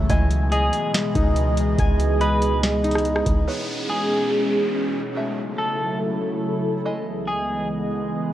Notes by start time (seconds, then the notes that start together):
Already playing: C#4 E4 E5
0.09 C#2 B2 E3 G#3 E4 G#4 D#5 G#5, kick, closed hi-hat
0.30 closed hi-hat
0.52 G#4 D#5, closed hi-hat
0.73 closed hi-hat
0.94 snare, closed hi-hat
1.15 C#2 D#4, kick, closed hi-hat
1.36 closed hi-hat
1.57 closed hi-hat
1.78 C#2 G#5, kick, closed hi-hat
2.00 closed hi-hat
2.21 B4 D#5, closed hi-hat
2.42 closed hi-hat
2.63 snare, closed hi-hat
2.84 D#4, closed hi-hat
2.91 closed hi-hat
2.95 cross-stick, closed hi-hat
3.05 closed hi-hat
3.16 cross-stick
3.26 C#2, kick, closed hi-hat
3.47 B2 E3 G#3 B3 C#4 E4 G#4 C#5, downlifter
3.89 G#4
5.16 C#3 F#3 A3 E4 F#4 A4 E5
5.58 A4
6.85 C#2 E3 G#3 B3 E4 G#4 D#5
7.28 G#4